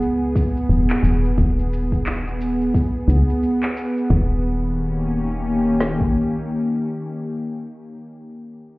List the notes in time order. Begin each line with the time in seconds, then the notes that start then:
Already playing: B3 G#4
0.01 C#2, shaker
0.36 kick, shaker
0.57 shaker
0.69 D#1, shaker
0.90 clap
1.03 D#1, shaker
1.25 shaker
1.38 D#1, kick, shaker
1.59 shaker
1.73 shaker
1.92 kick, shaker
2.06 clap, shaker
2.28 shaker
2.41 shaker
2.61 shaker
2.74 kick, shaker
3.08 C#2, shaker
3.30 shaker
3.43 shaker
3.63 clap
3.77 shaker
3.97 shaker
4.10 D#1 D#3, kick
4.24 A#3
4.35 C#4
4.43 G4
5.80 snare
6.01 kick